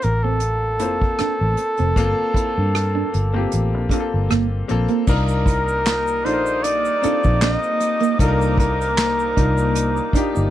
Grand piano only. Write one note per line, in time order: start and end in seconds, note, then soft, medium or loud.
0.00 0.80 A#3 medium
0.00 0.80 C4 medium
0.00 0.82 F4 medium
0.00 0.14 A4 medium
0.80 1.74 A#3 medium
0.80 1.74 C4 medium
0.80 1.75 F4 medium
0.80 1.75 C5 medium
1.97 3.06 A#3 medium
1.97 3.06 C4 medium
1.97 3.07 F4 medium
1.97 3.07 A4 loud
3.34 3.80 A#3 medium
3.34 3.80 C4 medium
3.34 3.81 F4 medium
3.34 3.81 G4 medium
3.91 4.54 A#3 medium
3.91 4.55 C4 medium
3.91 4.55 F4 medium
3.91 3.99 A4 medium
4.00 4.59 A4 medium
4.68 5.00 A#3 medium
4.68 5.01 C4 medium
4.68 5.01 F4 medium
4.68 5.02 A4 medium
5.07 6.02 D4 medium
5.07 6.02 D#4 medium
5.07 6.03 F4 medium
5.07 6.03 A#4 loud
6.24 6.88 D4 medium
6.24 6.88 D#4 medium
6.24 6.88 F4 medium
6.24 6.32 A4 medium
6.33 6.92 A#4 medium
7.02 7.97 C4 medium
7.02 7.97 D#4 medium
7.02 7.97 F4 medium
7.02 7.98 A4 medium
8.19 9.14 D4 medium
8.19 9.14 D#4 medium
8.19 9.14 F4 medium
8.19 8.28 A4 medium
8.28 9.18 A#4 loud
9.37 10.00 D4 medium
9.37 10.00 D#4 medium
9.37 10.01 F4 medium
9.37 10.01 A#4 medium
10.14 10.50 D4 medium
10.14 10.50 D#4 medium
10.14 10.50 F4 medium
10.14 10.50 G4 medium